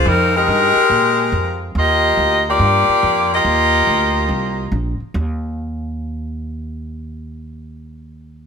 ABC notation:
X:1
M:4/4
L:1/8
Q:"Swing" 1/4=142
K:Eb
V:1 name="Saxophone section"
[G,CEB] [A,EGB]6 z | [B,FGe]3 [B,FGd]4 [B,FGe]- | [B,FGe]6 z2 | z8 |
z8 |]
V:2 name="Upright bass" clef=bass
F,,2 G,, z B,,2 F,,2 | E,,2 D,,2 G,, z F,,2 | E,,2 D,,2 C,,2 B,,, z | E,,8- |
E,,8 |]